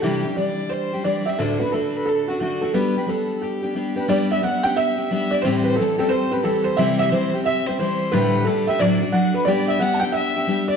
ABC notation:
X:1
M:4/4
L:1/16
Q:"Swing" 1/4=178
K:G
V:1 name="Felt piano"
G4 d4 c4 d2 e2 | A2 B2 A4 A2 F2 F2 A2 | B4 A4 G6 B2 | d2 e2 f2 g2 e6 d2 |
c2 B2 A2 A2 c2 B2 A2 c2 | e2 e2 c4 e2 c2 c4 | B4 A2 e2 d4 f2 B2 | d2 e2 f3/2 a/2 g2 e6 d2 |]
V:2 name="Fiddle"
G4 d4 c4 d2 e2 | A2 B2 A2 B2 A2 F2 F2 A2 | B4 A4 G6 B2 | d2 e2 f4 e4 e2 d2 |
(3c2 c2 c2 A2 A2 c2 B2 A2 c2 | e2 e2 c4 e2 c2 c4 | B4 A2 e2 d4 f2 B2 | d2 e2 f2 g2 e6 d2 |]
V:3 name="Steel-string acoustic guitar"
[C,E,G,DG]2 [G,DG]2 [E,G,DG]6 [G,DG]2 [E,G,DG]2 [G,DG]2 | [D,,A,,D,A,DF]2 [D,A,DF]2 [D,A,DF]6 [D,A,DF]2 [D,A,DF]2 [D,A,DF]2 | [G,B,DG]2 [B,DG]2 [G,B,DG]6 [B,DG]2 [G,B,DG]2 [B,DG]2 | [G,B,DG]4 [G,B,DG]2 [B,DG]4 [B,DG]2 [G,B,DG]4 |
[A,,E,G,CG]4 [E,G,CG]2 [G,CG]4 [G,CG]2 [E,G,CG]4 | [C,E,G,CG]4 [E,G,CG]2 [G,CG]4 [G,CG]2 [E,G,CG]4 | [D,,A,,D,G,A,G]4 [D,G,A,G]2 [D,G,A,G]2 [D,,A,,F,A,DF]2 [F,A,DF]2 [F,A,DF]4 | [G,B,DG]4 [G,B,DG]2 [B,DG]4 [B,DG]2 [G,B,DG]4 |]